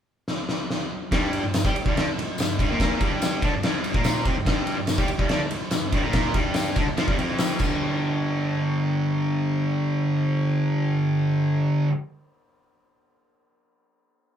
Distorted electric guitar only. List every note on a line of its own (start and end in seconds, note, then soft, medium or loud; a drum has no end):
1.11 1.42 G2 medium
1.11 1.43 G3 loud
1.44 1.60 G2 medium
1.65 1.74 G3 medium
1.65 1.75 G4 loud
1.75 muted distorted electric guitar stroke medium
1.86 1.95 G2 medium
1.86 1.96 G3 medium
1.96 2.06 D3 loud
1.96 2.06 D4 loud
2.08 muted distorted electric guitar stroke medium
2.18 muted distorted electric guitar stroke medium
2.39 2.55 G2 medium
2.59 2.68 G2 medium
2.59 2.69 G3 loud
2.69 3.00 A#2 medium
2.69 3.00 A#3 loud
3.01 3.42 G2 medium
3.01 3.42 G3 loud
3.42 3.52 D3 medium
3.42 3.53 D4 loud
3.53 3.61 G2 medium
3.63 3.93 G2 loud
3.63 3.94 G3 loud
3.94 4.25 A#2 loud
3.94 4.25 A#3 loud
4.25 4.35 C3 medium
4.25 4.36 C4 loud
4.36 4.44 G2 medium
4.46 4.76 G2 loud
4.46 4.77 G3 loud
4.77 4.94 G2 medium
4.98 5.08 G3 medium
4.98 5.09 G4 loud
5.09 muted distorted electric guitar stroke medium
5.18 5.29 G2 medium
5.18 5.30 G3 loud
5.30 5.40 D3 loud
5.30 5.40 D4 loud
5.41 muted distorted electric guitar stroke medium
5.52 muted distorted electric guitar stroke medium
5.72 5.88 G2 medium
5.93 6.02 G2 medium
5.93 6.03 G3 loud
6.02 6.33 A#2 medium
6.02 6.34 A#3 loud
6.34 6.75 G2 medium
6.34 6.76 G3 loud
6.76 6.86 D3 medium
6.76 6.86 D4 loud
6.87 6.97 G2 medium
6.96 7.07 F3 loud
6.96 7.07 F4 loud
7.07 7.17 G2 medium
7.07 7.18 G3 medium
7.18 7.59 F2 medium
7.18 7.60 F3 medium
7.59 11.89 G2 loud
7.59 11.91 D3 loud
7.63 11.93 G3 loud